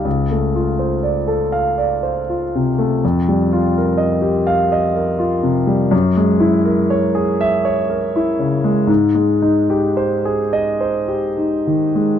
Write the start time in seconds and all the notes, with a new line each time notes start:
0.05 C#2
0.31 A3
0.55 F4
0.79 C5
1.03 D5
1.28 A4
1.52 F5
1.78 D5
2.03 C5
2.29 F4
2.55 C3
2.79 A3
3.05 F2
3.29 G3
3.53 F4
3.78 A#4
3.98 D#5
4.22 G4
4.47 F5
4.72 D#5
4.96 A#4
5.19 F4
5.43 C3
5.67 G3
5.91 F#2
6.17 G#3
6.40 E4
6.65 A#4
6.90 C#5
7.15 G#4
7.41 E5
7.65 C#5
7.90 A#4
8.16 E4
8.39 C#3
8.64 G#3
8.87 G#2
9.15 G#3
9.42 D#4
9.70 G4
9.97 C5
10.25 G#4
10.53 D#5
10.81 C5
11.08 G4
11.37 D#4
11.67 D#3
11.95 G#3